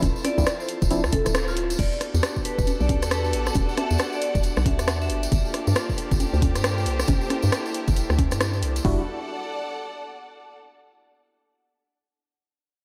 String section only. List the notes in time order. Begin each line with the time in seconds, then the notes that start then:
1.79 A4
2.47 D5
2.84 F#5
5.10 G4
5.64 C5
8.84 A4
8.93 D5
9.00 F#5